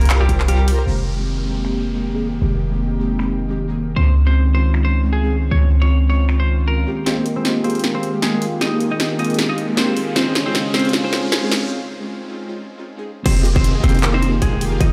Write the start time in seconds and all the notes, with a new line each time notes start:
Already playing: C2 F4 G4 A#4 C5 A#5
0.01 F4, closed hi-hat
0.05 closed hi-hat
0.10 F5, clap, closed hi-hat
0.20 G3 F4 G4
0.29 G4, kick, closed hi-hat
0.40 clap
0.48 G3 G4 F5, closed hi-hat
0.59 A#4
0.68 G5, open hi-hat
0.79 A#4
0.86 F1 D#3 G#3 A#3 C4 D#4 G4, downlifter
1.16 G#3 A#3 C4 D#4 G4
1.44 G#3 A#3 C4 D#4 G4
1.63 G#3 A#3 C4 D#4 G4, finger snap
1.94 G#3 A#3 C4 D#4 G4
2.13 G#3 A#3 C4 D#4 G#4
2.41 F1 G#3 A#3 C4 D#4 G4, closed hi-hat
2.61 closed hi-hat
2.71 G#3 A#3 C4 D#4 G4
2.81 closed hi-hat
2.99 G#3 A#3 C4 D#4 G4, closed hi-hat
3.05 closed hi-hat
3.11 closed hi-hat
3.15 G#3 A#3, closed hi-hat
3.19 C4 D#4 G4, finger snap, closed hi-hat
3.39 closed hi-hat
3.48 G#3 A#3 C4 D#4 G4
3.58 closed hi-hat
3.68 G#3 A#3 C4 D#4 G#4
3.77 closed hi-hat
3.96 C#2 G#3 C4 C#4 D#4 F4 C5, closed hi-hat
4.16 closed hi-hat
4.26 G#3 C4 C#4 D#4 F4 C5
4.35 closed hi-hat
4.54 G#3 C4 C#4 D#4 F4 C5, closed hi-hat
4.60 closed hi-hat
4.66 closed hi-hat
4.70 G#3 C4, closed hi-hat
4.74 C#4 D#4 F4, finger snap, closed hi-hat
4.85 C5
4.93 closed hi-hat
5.03 G#3 C4 C#4 D#4 F4
5.13 G#4, closed hi-hat
5.23 G#3 C4 C#4 D#4 G#4
5.32 closed hi-hat
5.50 C#2 G#3 C4 C#4 D#4 F4 C#5, closed hi-hat
5.71 closed hi-hat
5.81 G#3 C4 C#4 D#4 F4 C#5
5.90 closed hi-hat
6.08 G#3 C4 C#4 D#4 F4 C#5, closed hi-hat
6.15 closed hi-hat
6.20 closed hi-hat
6.25 G#3 C4, closed hi-hat
6.29 C#4 D#4 F4, finger snap, closed hi-hat, swell
6.40 C5
6.48 closed hi-hat
6.67 G#3 C4 C#4 D#4 F4 A#4, closed hi-hat
6.86 G#3 A#3 C4 D#4 G4, closed hi-hat
7.05 D#3 G#3 A#3 C4 D#4 F4 G4 G#4 C5 D#5 G5, snare, closed hi-hat, riser
7.26 closed hi-hat
7.36 G#3 A#3 C4 D#4 G4 C5
7.45 snare, closed hi-hat
7.63 G#3 A#3 C4 D#4 F4 G4 G#4 C5 F5, closed hi-hat
7.70 closed hi-hat
7.75 closed hi-hat
7.79 G#3 A#3, closed hi-hat
7.84 C4 D#4 G4, snare, closed hi-hat
7.94 C4 C5
8.03 closed hi-hat
8.13 G#3 A#3 C4 D#4 G4
8.22 G#3 G#4, snare, closed hi-hat
8.32 G#3 A#3 C4 D#4 G#4
8.42 open hi-hat
8.60 G#3 A#3 C4 D#4 F4 G4 G#4 D#5, snare, closed hi-hat
8.80 closed hi-hat
8.90 G#3 A#3 C4 D#4 G4 D#5
9.00 snare, closed hi-hat
9.18 G#3 A#3 C4 D#4 F4 G4 G#4 D#5 F5, closed hi-hat
9.24 closed hi-hat
9.30 closed hi-hat
9.34 G#3 A#3, closed hi-hat
9.39 C4 D#4 G4, snare, closed hi-hat
9.49 D#4 D#5
9.58 closed hi-hat
9.68 G#3 A#3 C4 D#4 G4
9.77 C4 C5, snare, closed hi-hat
9.87 G#3 A#3 C4 D#4 G#4
9.97 open hi-hat
10.15 C#3 G#3 C4 C#4 D#4 F4 G#4 C5 D#5, snare, closed hi-hat
10.35 snare, closed hi-hat
10.45 G#3 C4 C#4 D#4 F4 C5
10.55 snare, closed hi-hat
10.73 G#3 C4 C#4 D#4 F4 G#4 C5 F5, snare, closed hi-hat
10.79 closed hi-hat
10.85 closed hi-hat
10.89 G#3 C4, closed hi-hat
10.93 C#4 D#4 F4, snare, closed hi-hat
11.04 C4 C5
11.13 snare, closed hi-hat
11.22 G#3 C4 C#4 D#4 F4
11.32 G#3 G#4, snare, closed hi-hat
11.42 G#3 C4 C#4 D#4 G#4
11.52 snare, open hi-hat
11.70 G#3 C4 C#4 D#4 F4
12.00 G#3 C4 C#4 D#4 F4
12.28 G#3 C4 C#4 D#4 F4
12.47 G#3 C4 C#4 D#4 F4
12.77 G#3 C4 C#4 D#4 F4
12.97 G#3 C4 C#4 D#4 G#4
13.26 F1 D#3 G#3 A#3 C4 D#4 F4 G4 G#4 C5 D#5 G5, kick, closed hi-hat, crash, downlifter
13.45 G4, closed hi-hat
13.56 C4 D#4 C5, kick
13.64 closed hi-hat
13.75 G#4
13.84 F1 A#3 C4 F4 G4 G#4 C5 F5, kick, closed hi-hat
13.89 closed hi-hat
13.95 D#4, closed hi-hat
13.99 closed hi-hat
14.03 A#4, clap, closed hi-hat
14.14 C4 D#4 C5
14.22 D#4, closed hi-hat
14.42 G#3 G4 G#4, kick, closed hi-hat
14.52 D#4
14.61 G4, open hi-hat
14.72 G#4
14.80 F1 A#3 D#4 F4 G4 G#4 D#5, kick, closed hi-hat